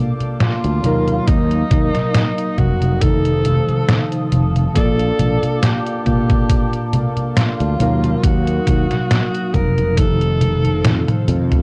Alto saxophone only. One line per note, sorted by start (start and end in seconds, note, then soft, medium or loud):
0.41 1.29 F4 loud
1.28 2.59 D#4 loud
2.58 3.03 F#4 loud
3.01 4.32 A4 loud
4.76 5.64 A4 loud
5.63 6.06 G4 loud
6.06 6.89 G4 loud
7.37 8.25 F4 medium
8.24 9.56 F#4 loud
9.54 9.99 A#4 loud
9.98 11.28 A4 loud